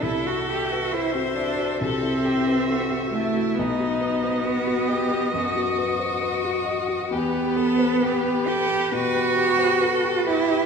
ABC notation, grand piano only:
X:1
M:4/4
L:1/16
Q:1/4=68
K:Em
V:1 name="Grand piano"
C,, F A B A F e F C,, E A B A F e F | B,,, F B c B F ^d F F,, F B c B F d F | E,, G B c B G B2 B,, G B c B G B G |]